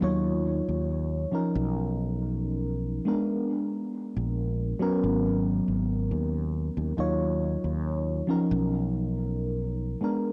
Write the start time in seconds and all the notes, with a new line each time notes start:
0.01 D#2 F#3 D#4 F4 C#5
0.68 D#2
1.32 F3 C#4 D#4 A#4
1.55 B1
3.05 G#3 B3 D4 A#4
4.16 A#1
4.79 F#3 B3 C#4 A#4
5.03 G#1
5.68 G#1
6.11 D#2
6.77 D#2
6.97 D#2 F#3 D#4 F4 C#5
7.64 D#2
8.27 F3 C#4 D#4 A#4
8.51 B1
10.01 G#3 B3 D4 A#4